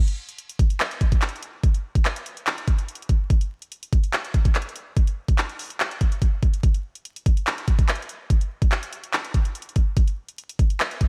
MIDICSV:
0, 0, Header, 1, 2, 480
1, 0, Start_track
1, 0, Tempo, 416667
1, 1882, Time_signature, 4, 2, 24, 8
1, 12765, End_track
2, 0, Start_track
2, 0, Title_t, "Drums"
2, 88, Note_on_c, 9, 42, 61
2, 203, Note_off_c, 9, 42, 0
2, 329, Note_on_c, 9, 42, 57
2, 442, Note_off_c, 9, 42, 0
2, 442, Note_on_c, 9, 42, 74
2, 558, Note_off_c, 9, 42, 0
2, 569, Note_on_c, 9, 42, 91
2, 682, Note_on_c, 9, 36, 112
2, 683, Note_off_c, 9, 42, 0
2, 683, Note_on_c, 9, 42, 84
2, 798, Note_off_c, 9, 36, 0
2, 798, Note_off_c, 9, 42, 0
2, 809, Note_on_c, 9, 42, 59
2, 921, Note_off_c, 9, 42, 0
2, 921, Note_on_c, 9, 42, 85
2, 922, Note_on_c, 9, 39, 126
2, 1037, Note_off_c, 9, 39, 0
2, 1037, Note_off_c, 9, 42, 0
2, 1050, Note_on_c, 9, 42, 60
2, 1162, Note_off_c, 9, 42, 0
2, 1162, Note_on_c, 9, 42, 77
2, 1163, Note_on_c, 9, 36, 93
2, 1277, Note_off_c, 9, 42, 0
2, 1278, Note_off_c, 9, 36, 0
2, 1289, Note_on_c, 9, 42, 65
2, 1290, Note_on_c, 9, 36, 99
2, 1401, Note_off_c, 9, 42, 0
2, 1401, Note_on_c, 9, 39, 95
2, 1401, Note_on_c, 9, 42, 79
2, 1405, Note_off_c, 9, 36, 0
2, 1482, Note_off_c, 9, 42, 0
2, 1482, Note_on_c, 9, 42, 65
2, 1516, Note_off_c, 9, 39, 0
2, 1562, Note_off_c, 9, 42, 0
2, 1562, Note_on_c, 9, 42, 46
2, 1641, Note_off_c, 9, 42, 0
2, 1641, Note_on_c, 9, 42, 78
2, 1756, Note_off_c, 9, 42, 0
2, 1882, Note_on_c, 9, 36, 114
2, 1882, Note_on_c, 9, 42, 80
2, 1998, Note_off_c, 9, 36, 0
2, 1998, Note_off_c, 9, 42, 0
2, 2008, Note_on_c, 9, 42, 62
2, 2123, Note_off_c, 9, 42, 0
2, 2249, Note_on_c, 9, 36, 98
2, 2249, Note_on_c, 9, 42, 58
2, 2361, Note_off_c, 9, 42, 0
2, 2361, Note_on_c, 9, 42, 74
2, 2362, Note_on_c, 9, 39, 101
2, 2364, Note_off_c, 9, 36, 0
2, 2476, Note_off_c, 9, 42, 0
2, 2477, Note_off_c, 9, 39, 0
2, 2490, Note_on_c, 9, 42, 91
2, 2603, Note_off_c, 9, 42, 0
2, 2603, Note_on_c, 9, 42, 83
2, 2718, Note_off_c, 9, 42, 0
2, 2730, Note_on_c, 9, 42, 58
2, 2842, Note_off_c, 9, 42, 0
2, 2842, Note_on_c, 9, 42, 84
2, 2843, Note_on_c, 9, 39, 123
2, 2957, Note_off_c, 9, 42, 0
2, 2958, Note_off_c, 9, 39, 0
2, 2972, Note_on_c, 9, 42, 61
2, 3083, Note_off_c, 9, 42, 0
2, 3083, Note_on_c, 9, 36, 93
2, 3083, Note_on_c, 9, 42, 76
2, 3198, Note_off_c, 9, 42, 0
2, 3199, Note_off_c, 9, 36, 0
2, 3210, Note_on_c, 9, 42, 62
2, 3324, Note_off_c, 9, 42, 0
2, 3324, Note_on_c, 9, 42, 80
2, 3403, Note_off_c, 9, 42, 0
2, 3403, Note_on_c, 9, 42, 61
2, 3483, Note_off_c, 9, 42, 0
2, 3483, Note_on_c, 9, 42, 46
2, 3562, Note_off_c, 9, 42, 0
2, 3562, Note_on_c, 9, 42, 79
2, 3563, Note_on_c, 9, 36, 100
2, 3677, Note_off_c, 9, 42, 0
2, 3679, Note_off_c, 9, 36, 0
2, 3803, Note_on_c, 9, 36, 113
2, 3803, Note_on_c, 9, 42, 85
2, 3918, Note_off_c, 9, 36, 0
2, 3918, Note_off_c, 9, 42, 0
2, 3928, Note_on_c, 9, 42, 60
2, 4044, Note_off_c, 9, 42, 0
2, 4169, Note_on_c, 9, 42, 58
2, 4282, Note_off_c, 9, 42, 0
2, 4282, Note_on_c, 9, 42, 75
2, 4397, Note_off_c, 9, 42, 0
2, 4410, Note_on_c, 9, 42, 97
2, 4523, Note_off_c, 9, 42, 0
2, 4523, Note_on_c, 9, 36, 107
2, 4523, Note_on_c, 9, 42, 84
2, 4638, Note_off_c, 9, 36, 0
2, 4638, Note_off_c, 9, 42, 0
2, 4649, Note_on_c, 9, 42, 59
2, 4761, Note_off_c, 9, 42, 0
2, 4761, Note_on_c, 9, 42, 88
2, 4762, Note_on_c, 9, 39, 126
2, 4877, Note_off_c, 9, 39, 0
2, 4877, Note_off_c, 9, 42, 0
2, 4891, Note_on_c, 9, 42, 58
2, 5003, Note_off_c, 9, 42, 0
2, 5003, Note_on_c, 9, 42, 77
2, 5004, Note_on_c, 9, 36, 95
2, 5118, Note_off_c, 9, 42, 0
2, 5119, Note_off_c, 9, 36, 0
2, 5129, Note_on_c, 9, 42, 62
2, 5130, Note_on_c, 9, 36, 98
2, 5242, Note_on_c, 9, 39, 94
2, 5243, Note_off_c, 9, 42, 0
2, 5243, Note_on_c, 9, 42, 81
2, 5245, Note_off_c, 9, 36, 0
2, 5322, Note_off_c, 9, 42, 0
2, 5322, Note_on_c, 9, 42, 64
2, 5357, Note_off_c, 9, 39, 0
2, 5402, Note_off_c, 9, 42, 0
2, 5402, Note_on_c, 9, 42, 47
2, 5480, Note_off_c, 9, 42, 0
2, 5480, Note_on_c, 9, 42, 78
2, 5595, Note_off_c, 9, 42, 0
2, 5721, Note_on_c, 9, 42, 85
2, 5722, Note_on_c, 9, 36, 115
2, 5836, Note_off_c, 9, 42, 0
2, 5837, Note_off_c, 9, 36, 0
2, 5846, Note_on_c, 9, 42, 61
2, 5961, Note_off_c, 9, 42, 0
2, 6088, Note_on_c, 9, 42, 58
2, 6089, Note_on_c, 9, 36, 98
2, 6201, Note_off_c, 9, 42, 0
2, 6201, Note_on_c, 9, 39, 105
2, 6201, Note_on_c, 9, 42, 78
2, 6204, Note_off_c, 9, 36, 0
2, 6316, Note_off_c, 9, 39, 0
2, 6316, Note_off_c, 9, 42, 0
2, 6329, Note_on_c, 9, 42, 43
2, 6442, Note_on_c, 9, 46, 83
2, 6444, Note_off_c, 9, 42, 0
2, 6558, Note_off_c, 9, 46, 0
2, 6570, Note_on_c, 9, 42, 58
2, 6682, Note_off_c, 9, 42, 0
2, 6682, Note_on_c, 9, 42, 82
2, 6683, Note_on_c, 9, 39, 127
2, 6797, Note_off_c, 9, 42, 0
2, 6798, Note_off_c, 9, 39, 0
2, 6811, Note_on_c, 9, 42, 60
2, 6922, Note_off_c, 9, 42, 0
2, 6922, Note_on_c, 9, 42, 74
2, 6923, Note_on_c, 9, 36, 90
2, 7037, Note_off_c, 9, 42, 0
2, 7038, Note_off_c, 9, 36, 0
2, 7049, Note_on_c, 9, 42, 63
2, 7162, Note_off_c, 9, 42, 0
2, 7162, Note_on_c, 9, 42, 81
2, 7163, Note_on_c, 9, 36, 101
2, 7277, Note_off_c, 9, 42, 0
2, 7278, Note_off_c, 9, 36, 0
2, 7403, Note_on_c, 9, 42, 48
2, 7404, Note_on_c, 9, 36, 102
2, 7518, Note_off_c, 9, 42, 0
2, 7519, Note_off_c, 9, 36, 0
2, 7529, Note_on_c, 9, 42, 78
2, 7642, Note_off_c, 9, 42, 0
2, 7642, Note_on_c, 9, 36, 116
2, 7642, Note_on_c, 9, 42, 84
2, 7757, Note_off_c, 9, 42, 0
2, 7758, Note_off_c, 9, 36, 0
2, 7769, Note_on_c, 9, 42, 59
2, 7884, Note_off_c, 9, 42, 0
2, 8010, Note_on_c, 9, 42, 56
2, 8123, Note_off_c, 9, 42, 0
2, 8123, Note_on_c, 9, 42, 74
2, 8238, Note_off_c, 9, 42, 0
2, 8251, Note_on_c, 9, 42, 92
2, 8363, Note_on_c, 9, 36, 109
2, 8364, Note_off_c, 9, 42, 0
2, 8364, Note_on_c, 9, 42, 84
2, 8479, Note_off_c, 9, 36, 0
2, 8479, Note_off_c, 9, 42, 0
2, 8490, Note_on_c, 9, 42, 56
2, 8603, Note_off_c, 9, 42, 0
2, 8603, Note_on_c, 9, 42, 85
2, 8604, Note_on_c, 9, 39, 125
2, 8718, Note_off_c, 9, 42, 0
2, 8719, Note_off_c, 9, 39, 0
2, 8732, Note_on_c, 9, 42, 59
2, 8843, Note_off_c, 9, 42, 0
2, 8843, Note_on_c, 9, 42, 76
2, 8844, Note_on_c, 9, 36, 97
2, 8958, Note_off_c, 9, 42, 0
2, 8959, Note_off_c, 9, 36, 0
2, 8970, Note_on_c, 9, 42, 64
2, 8971, Note_on_c, 9, 36, 99
2, 9084, Note_off_c, 9, 42, 0
2, 9084, Note_on_c, 9, 39, 96
2, 9084, Note_on_c, 9, 42, 78
2, 9086, Note_off_c, 9, 36, 0
2, 9164, Note_off_c, 9, 42, 0
2, 9164, Note_on_c, 9, 42, 64
2, 9199, Note_off_c, 9, 39, 0
2, 9244, Note_off_c, 9, 42, 0
2, 9244, Note_on_c, 9, 42, 46
2, 9322, Note_off_c, 9, 42, 0
2, 9322, Note_on_c, 9, 42, 81
2, 9437, Note_off_c, 9, 42, 0
2, 9563, Note_on_c, 9, 36, 119
2, 9563, Note_on_c, 9, 42, 86
2, 9678, Note_off_c, 9, 36, 0
2, 9679, Note_off_c, 9, 42, 0
2, 9690, Note_on_c, 9, 42, 62
2, 9806, Note_off_c, 9, 42, 0
2, 9929, Note_on_c, 9, 36, 100
2, 9930, Note_on_c, 9, 42, 57
2, 10043, Note_off_c, 9, 42, 0
2, 10043, Note_on_c, 9, 39, 103
2, 10043, Note_on_c, 9, 42, 75
2, 10045, Note_off_c, 9, 36, 0
2, 10158, Note_off_c, 9, 39, 0
2, 10158, Note_off_c, 9, 42, 0
2, 10171, Note_on_c, 9, 42, 95
2, 10283, Note_off_c, 9, 42, 0
2, 10283, Note_on_c, 9, 42, 84
2, 10399, Note_off_c, 9, 42, 0
2, 10410, Note_on_c, 9, 42, 59
2, 10522, Note_off_c, 9, 42, 0
2, 10522, Note_on_c, 9, 42, 86
2, 10523, Note_on_c, 9, 39, 127
2, 10637, Note_off_c, 9, 42, 0
2, 10638, Note_off_c, 9, 39, 0
2, 10651, Note_on_c, 9, 42, 60
2, 10762, Note_off_c, 9, 42, 0
2, 10762, Note_on_c, 9, 42, 77
2, 10763, Note_on_c, 9, 36, 92
2, 10877, Note_off_c, 9, 42, 0
2, 10879, Note_off_c, 9, 36, 0
2, 10888, Note_on_c, 9, 42, 64
2, 11002, Note_off_c, 9, 42, 0
2, 11002, Note_on_c, 9, 42, 81
2, 11083, Note_off_c, 9, 42, 0
2, 11083, Note_on_c, 9, 42, 64
2, 11162, Note_off_c, 9, 42, 0
2, 11162, Note_on_c, 9, 42, 46
2, 11241, Note_off_c, 9, 42, 0
2, 11241, Note_on_c, 9, 42, 80
2, 11243, Note_on_c, 9, 36, 102
2, 11356, Note_off_c, 9, 42, 0
2, 11358, Note_off_c, 9, 36, 0
2, 11481, Note_on_c, 9, 42, 83
2, 11482, Note_on_c, 9, 36, 116
2, 11596, Note_off_c, 9, 42, 0
2, 11597, Note_off_c, 9, 36, 0
2, 11607, Note_on_c, 9, 42, 61
2, 11723, Note_off_c, 9, 42, 0
2, 11849, Note_on_c, 9, 42, 59
2, 11961, Note_off_c, 9, 42, 0
2, 11961, Note_on_c, 9, 42, 75
2, 12077, Note_off_c, 9, 42, 0
2, 12089, Note_on_c, 9, 42, 95
2, 12202, Note_off_c, 9, 42, 0
2, 12202, Note_on_c, 9, 36, 111
2, 12202, Note_on_c, 9, 42, 84
2, 12317, Note_off_c, 9, 36, 0
2, 12318, Note_off_c, 9, 42, 0
2, 12328, Note_on_c, 9, 42, 58
2, 12441, Note_off_c, 9, 42, 0
2, 12441, Note_on_c, 9, 42, 85
2, 12442, Note_on_c, 9, 39, 127
2, 12557, Note_off_c, 9, 39, 0
2, 12557, Note_off_c, 9, 42, 0
2, 12570, Note_on_c, 9, 42, 60
2, 12681, Note_off_c, 9, 42, 0
2, 12681, Note_on_c, 9, 42, 75
2, 12683, Note_on_c, 9, 36, 97
2, 12765, Note_off_c, 9, 36, 0
2, 12765, Note_off_c, 9, 42, 0
2, 12765, End_track
0, 0, End_of_file